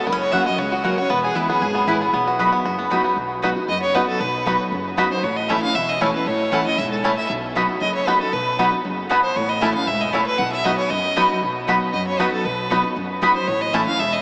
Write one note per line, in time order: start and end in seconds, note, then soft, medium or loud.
0.07 0.41 F#1 medium
0.07 0.56 F#2 medium
0.07 0.12 B3 medium
0.07 0.19 A#4 medium
0.12 0.33 C#4 medium
0.20 0.33 C#5 medium
0.32 0.46 F#3 medium
0.32 0.42 A#3 medium
0.32 0.46 A#3 medium
0.32 0.46 C#4 medium
0.32 0.42 F#4 medium
0.32 0.45 F#4 medium
0.32 0.44 F#4 medium
0.32 0.42 C#5 medium
0.32 0.46 E5 medium
0.32 0.42 F#5 loud
0.46 0.59 C#4 medium
0.46 0.58 F#4 medium
0.46 0.57 F#4 medium
0.46 0.60 D#5 loud
0.58 0.92 C#2 medium
0.58 1.07 C#3 medium
0.58 0.71 F#4 medium
0.58 0.73 C#5 medium
0.72 0.85 F#4 medium
0.72 0.83 F#4 medium
0.84 0.97 F#3 medium
0.84 0.93 A#3 medium
0.84 0.97 A#3 medium
0.84 0.98 C#4 medium
0.84 0.94 F#4 loud
0.84 0.97 F#4 medium
0.84 0.99 A#4 medium
0.84 0.94 C#5 loud
0.84 0.94 F#5 medium
0.98 1.11 C#4 soft
0.98 1.10 F#4 medium
0.98 1.11 C#5 loud
1.10 1.27 E1 medium
1.10 1.60 E2 medium
1.10 1.49 B3 medium
1.10 1.23 B4 medium
1.23 1.37 G#4 medium
1.23 1.60 G#4 medium
1.35 1.58 F#1 medium
1.35 1.49 E3 medium
1.35 1.49 G#3 medium
1.35 1.45 B3 medium
1.35 1.49 B3 medium
1.35 1.50 E4 medium
1.35 1.45 E4 medium
1.35 1.48 E4 medium
1.35 1.45 B4 medium
1.35 2.39 B4 medium
1.35 1.46 G#5 loud
1.49 1.74 B3 medium
1.49 1.62 B3 medium
1.49 1.61 E4 medium
1.49 2.13 G#4 medium
1.62 1.84 G#1 medium
1.62 2.12 B2 medium
1.62 1.98 G#4 medium
1.75 2.01 B3 medium
1.87 2.09 A1 medium
1.87 2.01 E3 medium
1.87 2.01 G#3 medium
1.87 1.97 B3 medium
1.87 2.01 B3 medium
1.87 2.14 E4 medium
1.87 1.97 E4 loud
1.87 2.00 E4 medium
1.87 1.97 B4 loud
1.87 1.98 G#5 loud
2.01 2.13 B3 medium
2.01 2.14 B3 soft
2.13 2.47 B1 medium
2.13 2.63 B2 medium
2.13 2.50 B3 medium
2.27 2.63 F#4 medium
2.39 2.64 F#3 medium
2.39 2.49 B3 medium
2.39 2.64 B3 medium
2.39 2.65 D#4 medium
2.39 2.49 F#4 medium
2.39 2.65 F#4 medium
2.39 2.76 B4 medium
2.39 2.49 D#5 medium
2.39 2.49 B5 medium
2.52 2.77 B3 medium
2.65 2.99 F#1 medium
2.65 3.15 F#2 medium
2.65 3.02 F#4 medium
2.79 3.03 B3 medium
2.90 3.16 F#3 medium
2.90 3.00 B3 medium
2.90 3.16 B3 medium
2.90 3.17 D#4 medium
2.90 3.16 D#4 medium
2.90 3.00 F#4 medium
2.90 3.17 F#4 medium
2.90 3.00 D#5 medium
2.90 3.01 B5 loud
3.04 3.17 B3 medium
3.17 3.51 B1 medium
3.17 3.66 B2 medium
3.42 3.56 F#3 medium
3.42 3.52 B3 medium
3.42 3.49 B3 medium
3.42 3.56 B3 medium
3.42 3.49 D#4 medium
3.42 3.56 D#4 loud
3.42 3.52 F#4 medium
3.42 3.49 F#4 medium
3.42 3.55 F#4 medium
3.42 3.52 D#5 medium
3.42 3.52 B5 medium
3.56 3.69 D#4 medium
3.56 3.68 F#4 medium
3.68 4.03 F#1 medium
3.68 4.18 F#2 medium
3.68 3.81 D#5 medium
3.82 3.96 C#5 medium
3.94 4.19 F#3 medium
3.94 4.04 B3 loud
3.94 4.19 B3 medium
3.94 4.01 B3 medium
3.94 4.01 D#4 medium
3.94 4.20 D#4 loud
3.94 4.04 F#4 medium
3.94 4.01 F#4 medium
3.94 4.20 F#4 medium
3.94 4.07 B4 medium
3.94 4.04 D#5 loud
3.94 4.04 B5 loud
4.08 4.22 A4 medium
4.20 4.54 B1 medium
4.20 4.70 B2 medium
4.20 4.59 B4 medium
4.46 4.70 F#3 medium
4.46 4.55 B3 medium
4.46 4.71 B3 medium
4.46 4.52 B3 medium
4.46 4.71 D#4 medium
4.46 4.52 D#4 medium
4.46 4.55 F#4 medium
4.46 4.53 F#4 medium
4.46 4.71 F#4 medium
4.46 4.56 D#5 medium
4.46 4.56 B5 medium
4.72 5.06 F#1 medium
4.72 5.21 F#2 medium
4.97 5.10 F#3 medium
4.97 5.07 B3 medium
4.97 5.10 B3 loud
4.97 5.04 B3 medium
4.97 5.11 D#4 medium
4.97 5.04 D#4 medium
4.97 5.07 F#4 loud
4.97 5.04 F#4 medium
4.97 5.09 F#4 loud
4.97 5.07 D#5 loud
4.97 5.07 B5 loud
5.10 5.23 D#4 soft
5.10 5.23 F#4 medium
5.10 5.25 C5 loud
5.23 5.57 A1 medium
5.23 5.73 A2 medium
5.23 5.38 C#5 medium
5.36 5.51 D#5 medium
5.49 5.62 E3 medium
5.49 5.58 A3 medium
5.49 5.62 A3 medium
5.49 5.55 C#4 medium
5.49 5.63 C#4 medium
5.49 5.59 E4 medium
5.49 5.55 E4 medium
5.49 5.61 E4 medium
5.49 5.56 A4 medium
5.49 5.59 C#5 loud
5.49 5.62 E5 medium
5.49 5.59 A5 medium
5.62 5.75 C#4 medium
5.62 5.74 E4 medium
5.62 5.77 F5 loud
5.75 6.09 E1 medium
5.75 6.24 E2 loud
5.75 5.90 E5 medium
5.89 6.03 D#5 medium
6.00 6.13 E3 medium
6.00 6.14 A3 medium
6.00 6.10 A3 medium
6.00 6.14 C#4 medium
6.00 6.07 C#4 medium
6.00 6.10 E4 medium
6.00 6.07 E4 medium
6.00 6.13 E4 medium
6.00 6.07 A4 medium
6.00 6.14 C#5 medium
6.00 6.10 C#5 medium
6.00 6.11 A5 loud
6.14 6.27 C#4 soft
6.14 6.26 E4 medium
6.14 6.28 B4 medium
6.26 6.60 A1 medium
6.26 6.76 A2 medium
6.26 6.53 C#5 medium
6.51 6.65 E3 medium
6.51 6.61 A3 medium
6.51 6.65 A3 medium
6.51 6.58 C#4 medium
6.51 6.65 C#4 medium
6.51 6.62 E4 medium
6.51 6.64 E4 medium
6.51 6.59 E4 medium
6.51 6.59 A4 medium
6.51 6.62 C#5 medium
6.51 6.65 F#5 medium
6.51 6.62 A5 medium
6.65 6.78 C#4 medium
6.65 6.77 E4 medium
6.65 6.80 D#5 loud
6.78 7.12 E1 medium
6.78 7.02 G#2 medium
6.78 6.91 E5 medium
6.91 7.05 A4 medium
7.03 7.28 A2 medium
7.03 7.13 A3 medium
7.03 7.10 C#4 medium
7.03 7.13 E4 loud
7.03 7.10 E4 medium
7.03 7.10 A4 medium
7.03 7.16 C#5 medium
7.03 7.14 C#5 loud
7.03 7.14 A5 loud
7.17 7.29 E5 loud
7.29 7.64 B1 loud
7.29 7.79 B2 medium
7.55 7.68 F#3 medium
7.55 7.65 B3 medium
7.55 7.69 B3 medium
7.55 7.62 B3 medium
7.55 7.69 D#4 medium
7.55 7.62 D#4 medium
7.55 7.65 F#4 medium
7.55 7.62 F#4 medium
7.55 7.67 F#4 medium
7.55 7.65 D#5 medium
7.55 7.65 B5 medium
7.69 7.82 D#4 medium
7.69 7.81 F#4 medium
7.81 8.15 F#1 medium
7.81 8.30 F#2 medium
7.81 7.94 D#5 medium
7.95 8.08 C#5 medium
8.07 8.20 F#3 medium
8.07 8.16 B3 medium
8.07 8.13 B3 medium
8.07 8.20 B3 medium
8.07 8.13 D#4 medium
8.07 8.20 D#4 medium
8.07 8.17 F#4 loud
8.07 8.13 F#4 medium
8.07 8.19 F#4 loud
8.07 8.20 B4 medium
8.07 8.17 D#5 loud
8.07 8.17 B5 loud
8.20 8.33 D#4 soft
8.20 8.32 F#4 medium
8.20 8.34 A4 medium
8.33 8.67 B1 medium
8.33 8.82 B2 medium
8.33 8.72 B4 medium
8.59 8.71 F#3 medium
8.59 8.68 B3 medium
8.59 8.65 B3 medium
8.59 8.72 B3 medium
8.59 8.65 D#4 medium
8.59 8.72 D#4 loud
8.59 8.68 F#4 medium
8.59 8.65 F#4 medium
8.59 8.70 F#4 medium
8.59 8.68 D#5 loud
8.59 8.68 B5 medium
8.72 8.85 D#4 medium
8.72 8.84 F#4 medium
8.85 9.19 F#1 medium
8.85 9.09 F#2 medium
9.09 9.35 B2 medium
9.09 9.19 B3 loud
9.09 9.16 B3 medium
9.09 9.17 D#4 medium
9.09 9.19 F#4 medium
9.09 9.17 F#4 medium
9.09 9.20 D#5 medium
9.09 9.20 B5 loud
9.23 9.38 C5 medium
9.36 9.70 A1 medium
9.36 9.85 A2 medium
9.36 9.51 C#5 medium
9.49 9.63 D#5 medium
9.61 9.74 E3 medium
9.61 9.71 A3 medium
9.61 9.74 A3 medium
9.61 9.68 C#4 medium
9.61 9.75 C#4 loud
9.61 9.71 E4 medium
9.61 9.68 E4 medium
9.61 9.73 E4 medium
9.61 9.68 A4 medium
9.61 9.71 C#5 medium
9.61 9.74 E5 medium
9.61 9.71 A5 medium
9.74 9.88 C#4 medium
9.74 9.87 E4 medium
9.74 9.89 F5 loud
9.87 10.21 E1 medium
9.87 10.12 G#2 medium
9.87 10.02 E5 medium
10.01 10.15 D#5 medium
10.13 10.38 A2 medium
10.13 10.22 A3 medium
10.13 10.20 C#4 medium
10.13 10.22 E4 loud
10.13 10.20 E4 medium
10.13 10.20 A4 medium
10.13 10.26 C#5 medium
10.13 10.23 C#5 loud
10.13 10.23 A5 medium
10.26 10.40 B4 medium
10.38 10.73 B1 loud
10.38 10.88 B2 medium
10.38 10.52 F#5 medium
10.52 10.66 E5 medium
10.64 10.89 F#3 medium
10.64 10.74 B3 medium
10.64 10.89 B3 medium
10.64 10.71 B3 medium
10.64 10.90 D#4 medium
10.64 10.71 D#4 medium
10.64 10.74 F#4 medium
10.64 10.71 F#4 medium
10.64 10.90 F#4 loud
10.64 10.77 D#5 medium
10.64 10.74 D#5 medium
10.64 10.75 B5 medium
10.78 10.92 C#5 medium
10.90 11.25 F#2 medium
10.90 11.40 F#2 loud
10.90 11.36 D#5 medium
11.16 11.29 F#3 medium
11.16 11.25 B3 medium
11.16 11.22 B3 medium
11.16 11.29 B3 medium
11.16 11.23 D#4 medium
11.16 11.30 D#4 medium
11.16 11.26 F#4 loud
11.16 11.23 F#4 medium
11.16 11.28 F#4 loud
11.16 11.26 D#5 loud
11.16 11.26 B5 loud
11.30 11.42 D#4 soft
11.30 11.42 F#4 medium
11.42 11.76 B1 medium
11.42 11.91 B2 medium
11.67 11.92 F#3 medium
11.67 11.77 B3 medium
11.67 11.92 B3 medium
11.67 11.74 B3 medium
11.67 11.93 D#4 medium
11.67 11.74 D#4 medium
11.67 11.77 F#4 medium
11.67 11.93 F#4 medium
11.67 11.74 F#4 medium
11.67 11.77 D#5 medium
11.67 11.77 B5 loud
11.93 12.28 F#2 medium
11.93 12.43 F#2 medium
11.93 12.06 D#5 medium
12.07 12.21 C#5 medium
12.19 12.44 F#3 medium
12.19 12.28 B3 medium
12.19 12.44 B3 medium
12.19 12.25 B3 medium
12.19 12.26 D#4 medium
12.19 12.44 D#4 medium
12.19 12.29 F#4 loud
12.19 12.26 F#4 medium
12.19 12.44 F#4 loud
12.19 12.31 B4 medium
12.19 12.29 D#5 loud
12.19 12.29 B5 loud
12.32 12.46 A4 medium
12.44 12.79 B1 medium
12.44 12.94 B2 medium
12.44 12.84 B4 medium
12.70 12.83 F#3 medium
12.70 12.80 B3 medium
12.70 12.83 B3 medium
12.70 12.77 B3 medium
12.70 12.84 D#4 medium
12.70 12.77 D#4 medium
12.70 12.80 F#4 medium
12.70 12.82 F#4 medium
12.70 12.77 F#4 medium
12.70 12.80 D#5 medium
12.70 12.80 B5 loud
12.83 12.97 D#4 medium
12.83 12.96 F#4 medium
12.96 13.45 F#2 medium
12.96 13.30 F#2 medium
13.21 13.34 F#3 medium
13.21 13.31 B3 loud
13.21 13.35 B3 medium
13.21 13.28 B3 medium
13.21 13.35 D#4 medium
13.21 13.29 D#4 medium
13.21 13.31 F#4 loud
13.21 13.34 F#4 medium
13.21 13.29 F#4 medium
13.21 13.32 D#5 loud
13.21 13.32 B5 loud
13.35 13.48 D#4 soft
13.35 13.47 F#4 medium
13.35 13.49 C5 medium
13.47 13.82 A1 loud
13.47 13.96 A2 medium
13.47 13.62 C#5 medium
13.61 13.75 D#5 medium
13.73 13.86 E3 medium
13.73 13.86 A3 medium
13.73 13.83 A3 medium
13.73 13.86 C#4 medium
13.73 13.80 C#4 medium
13.73 13.83 E4 medium
13.73 13.85 E4 medium
13.73 13.80 E4 medium
13.73 13.80 A4 medium
13.73 13.83 C#5 medium
13.73 13.86 E5 medium
13.73 13.83 A5 loud
13.86 13.99 C#4 medium
13.86 13.99 E4 medium
13.86 14.01 F5 loud
13.99 14.22 E1 medium
13.99 14.22 E2 medium
13.99 14.14 E5 medium
14.12 14.22 D#5 medium